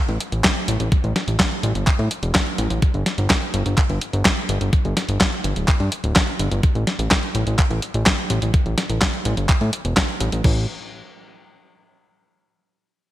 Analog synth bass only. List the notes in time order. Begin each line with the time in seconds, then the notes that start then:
0.09 A1
0.32 A1
0.68 A1
0.80 A1
1.04 A1
1.28 A1
1.63 A1
1.75 G1
1.99 A2
2.23 E1
2.59 A1
2.70 A1
2.94 G1
3.18 G1
3.54 G1
3.66 G1
3.90 G1
4.13 G1
4.49 G1
4.61 G1
4.85 G1
5.09 G1
5.44 G1
5.56 D1
5.80 G2
6.04 D1
6.40 G1
6.51 G1
6.75 A1
6.99 A1
7.35 A1
7.47 A1
7.71 A1
7.94 A1
8.30 A1
8.42 A1
8.66 A1
8.90 A1
9.25 A1
9.37 G1
9.61 A2
9.85 E1
10.21 A1
10.32 A1
10.44 A1